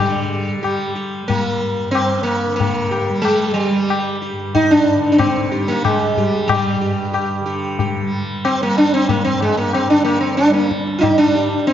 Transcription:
0.00 1.85 G2 soft
0.00 2.46 D3 medium
0.00 0.59 G3 medium
0.00 0.90 G3 medium
0.59 1.23 G3 soft
0.59 0.93 G4 soft
0.64 tabla na medium
0.95 1.26 G4 soft
1.23 3.09 G3 soft
1.28 1.91 A#3 medium
1.28 tabla tin medium
1.28 tabla ge medium
1.85 4.32 G2 medium
1.91 2.23 C4 medium
1.95 tabla na medium
2.23 2.55 A#3 medium
2.46 4.94 D3 soft
2.56 3.19 A#3 medium
2.60 tabla tin medium
2.60 tabla ge medium
2.91 3.22 G4 soft
2.91 tabla na soft
3.10 3.70 G3 soft
3.22 3.53 G#3 medium
3.22 tabla na medium
3.54 4.16 G3 medium
3.70 5.55 G3 medium
3.90 tabla na medium
4.22 4.52 G4 soft
4.32 6.77 G2 soft
4.55 4.71 D#4 medium
4.55 tabla tin medium
4.55 tabla ge medium
4.71 5.11 D4 medium
4.95 7.40 D3 medium
5.12 5.18 D4 medium
5.18 5.64 C4 medium
5.18 tabla na medium
5.18 tabla ge medium
5.51 6.17 G3 soft
5.51 5.82 G4 soft
5.51 tabla te soft
5.68 5.84 A#3 medium
5.84 6.51 G#3 medium
5.84 tabla na medium
5.84 tabla ge medium
6.17 8.02 G3 medium
6.17 6.48 G4 soft
6.17 tabla ge soft
6.48 7.42 G3 medium
6.48 tabla na medium
6.48 tabla ge medium
6.77 9.25 G2 medium
6.81 7.12 G4 soft
7.13 7.44 G4 soft
7.13 tabla na medium
7.41 9.87 D3 medium
7.46 7.76 G4 soft
7.79 8.10 G4 soft
7.79 tabla tin medium
7.79 tabla ge medium
8.02 8.64 G3 medium
8.45 8.61 C4 medium
8.45 tabla na medium
8.63 10.49 G3 medium
8.63 8.77 A#3 medium
8.78 8.93 D4 medium
8.94 9.09 C4 medium
9.09 9.24 A#3 medium
9.09 tabla tin medium
9.09 tabla ge medium
9.25 11.72 G2 medium
9.25 9.42 C4 medium
9.41 9.57 G#3 medium
9.41 tabla na soft
9.57 9.74 A#3 medium
9.73 9.90 C4 medium
9.73 tabla na medium
9.87 11.73 D3 medium
9.87 10.04 D4 medium
10.05 10.20 A#3 medium
10.05 tabla na medium
10.21 10.37 C4 medium
10.37 10.53 D4 medium
10.37 tabla te medium
10.49 11.10 G3 medium
10.53 10.69 A#3 medium
10.53 tabla te medium
10.71 tabla ke medium
10.87 tabla te soft
10.99 11.17 D#4 medium
10.99 11.03 F4 medium
11.03 tabla tin medium
11.03 tabla ge medium
11.10 11.73 G3 medium
11.18 11.67 D4 medium
11.35 11.65 G4 soft
11.67 11.73 C4 medium
11.67 tabla te medium

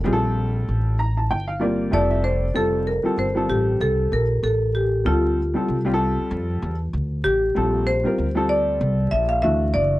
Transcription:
0.00 1.89 A4 medium
0.04 0.65 A#1 loud
0.04 0.92 G3 medium
0.04 0.93 C4 medium
0.04 0.93 F4 medium
0.04 0.13 G#4 medium
0.13 0.97 A4 medium
0.68 1.28 A1 medium
0.99 1.16 A#5 medium
1.17 1.30 A5 medium
1.31 1.90 G1 medium
1.31 1.47 G5 medium
1.48 1.60 F5 medium
1.60 1.89 G3 medium
1.60 1.93 A#3 medium
1.60 1.90 C4 medium
1.60 1.91 F4 medium
1.60 1.90 D5 medium
1.91 2.52 F1 loud
1.91 2.44 G3 medium
1.91 2.44 C4 medium
1.91 2.45 F4 medium
1.91 2.45 A4 medium
1.91 2.22 D5 medium
1.91 2.09 E5 medium
2.10 2.23 E5 medium
2.24 2.56 C5 medium
2.24 2.53 D5 medium
2.54 3.02 F1 medium
2.54 2.87 G3 medium
2.54 2.88 C4 medium
2.54 2.88 F4 medium
2.54 2.88 A4 medium
2.54 2.89 A4 medium
2.87 3.01 A#4 medium
3.03 3.24 G3 medium
3.03 3.25 C4 medium
3.03 3.25 F4 medium
3.03 3.25 A4 medium
3.03 muted upright bass stroke soft
3.18 3.48 G1 medium
3.18 3.33 C5 medium
3.35 4.21 G3 medium
3.35 4.21 C4 medium
3.35 4.22 F4 medium
3.35 4.22 A4 medium
3.49 3.79 A1 medium
3.49 3.64 G4 medium
3.80 4.10 C2 medium
3.80 4.13 A4 medium
4.12 4.42 A#1 medium
4.12 4.42 A#4 medium
4.43 5.02 A1 medium
4.43 4.72 A4 medium
4.75 4.89 G4 medium
5.05 5.52 D2 loud
5.05 5.38 G3 medium
5.05 5.38 C4 medium
5.05 5.39 F4 medium
5.05 7.21 F4 medium
5.05 5.39 A4 medium
5.54 5.75 G3 medium
5.54 5.75 C4 medium
5.54 5.75 F4 medium
5.54 5.76 A4 medium
5.54 muted upright bass stroke soft
5.68 6.15 C2 medium
5.85 6.71 G3 medium
5.85 6.71 C4 medium
5.85 6.72 F4 medium
5.85 5.92 G4 medium
5.94 6.75 A4 loud
6.17 muted upright bass stroke soft
6.31 6.60 F2 medium
6.62 6.92 E2 medium
6.93 7.23 D2 medium
7.24 7.54 A1 medium
7.24 7.89 G4 loud
7.55 8.03 A#1 medium
7.55 7.88 G3 medium
7.55 7.88 C4 medium
7.55 7.88 F4 medium
7.55 7.89 A4 medium
7.87 8.51 C5 medium
8.03 8.24 G3 medium
8.03 8.25 C4 medium
8.03 8.25 F4 medium
8.03 8.26 A#4 medium
8.03 muted upright bass stroke soft
8.18 8.78 D2 medium
8.35 9.21 G3 medium
8.35 9.21 C4 medium
8.35 9.22 F4 medium
8.35 9.22 A4 medium
8.49 9.08 D5 loud
8.81 9.10 C2 loud
9.11 9.42 A#1 medium
9.11 9.28 E5 medium
9.29 9.43 F5 medium
9.42 9.73 D2 medium
9.42 9.94 E3 medium
9.42 9.95 A3 medium
9.42 9.95 D4 medium
9.42 9.95 F#4 medium
9.42 9.75 E5 loud
9.74 10.00 F#1 medium
9.74 10.00 D5 loud

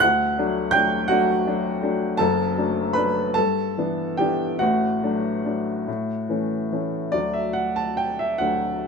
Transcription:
0.00 0.36 D2 medium
0.00 0.69 F#5 loud
0.00 0.72 F#6 loud
0.38 0.70 F#3 medium
0.38 0.70 A3 medium
0.38 0.71 D4 medium
0.71 1.07 F#3 medium
0.71 1.07 A3 medium
0.71 1.07 G5 medium
0.71 1.09 G6 loud
0.75 1.07 D4 medium
1.08 1.44 F#3 medium
1.08 1.44 A3 medium
1.08 1.44 D4 medium
1.08 2.16 F#4 medium
1.08 2.19 F#5 loud
1.47 1.80 F#3 medium
1.47 1.80 A3 medium
1.47 1.80 D4 medium
1.83 2.16 F#3 medium
1.83 2.17 A3 medium
1.83 2.17 D4 medium
2.17 2.57 F#1 medium
2.17 2.57 F#2 medium
2.17 2.92 A4 medium
2.17 2.95 A5 loud
2.58 2.93 F#3 medium
2.58 2.93 A3 medium
2.58 2.93 D4 medium
2.93 3.33 F#3 soft
2.93 3.33 A3 soft
2.93 3.33 D4 medium
2.93 3.33 B4 medium
2.93 3.35 B5 medium
3.34 3.77 G2 medium
3.34 4.15 A4 medium
3.34 4.18 A5 loud
3.78 4.15 E3 soft
3.78 4.16 B3 soft
3.78 4.16 D4 soft
4.17 4.58 E3 soft
4.17 4.58 B3 soft
4.17 4.58 D4 medium
4.17 4.58 G4 medium
4.17 4.60 G5 medium
4.59 5.01 A1 medium
4.59 5.02 A2 medium
4.59 6.67 F#4 medium
4.59 6.71 F#5 medium
5.03 5.41 F#3 soft
5.03 5.41 A3 soft
5.03 5.41 D4 soft
5.45 5.83 F#3 soft
5.45 5.84 A3 soft
5.45 5.84 D4 soft
5.88 6.29 A2 medium
6.29 6.68 E3 soft
6.29 6.68 A3 soft
6.29 6.68 C#4 soft
6.72 7.10 E3 soft
6.72 7.10 A3 soft
6.72 7.10 C#4 soft
7.12 8.37 D2 soft
7.12 8.37 F#3 soft
7.12 8.37 A3 soft
7.12 8.38 D4 soft
7.12 7.34 D5 medium
7.33 7.56 E5 medium
7.53 7.76 F#5 medium
7.76 7.98 A5 medium
7.97 8.19 G5 medium
8.19 8.41 E5 medium
8.38 8.87 D2 soft
8.38 8.87 F#3 soft
8.38 8.87 A3 soft
8.38 8.87 D4 soft
8.38 8.87 F#5 medium

